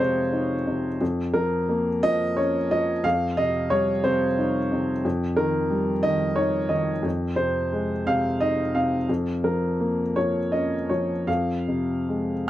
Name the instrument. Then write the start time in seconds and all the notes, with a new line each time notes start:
upright piano
Already playing: F2 G#3 C5 C#5 D#5 F5
0.00 C3
0.32 D#4
0.67 C3
1.01 F2
1.34 F3 A#4
1.69 A#3
2.03 F3 D#5
2.37 C#4 C#5
2.71 F3 D#5
3.04 F2 F5
3.37 C3 D#5
3.70 G3 C#5
4.04 C3 C5
4.38 D#4
4.72 C3
5.05 F2
5.36 D#3 A#4
5.70 G3
6.03 D#3 D#5
6.36 D#4 C#5
6.69 D#3 D#5
7.03 F2
7.36 C3 C5
7.72 G#3
8.07 C3 F5
8.41 D#4 D#5
8.75 C3 F5
9.09 F2
9.44 F3 A#4
9.80 A#3
10.16 F3 C#5
10.52 C#4 D#5
10.89 F3 C#5
11.27 F2 F5
11.68 C3
12.09 G#3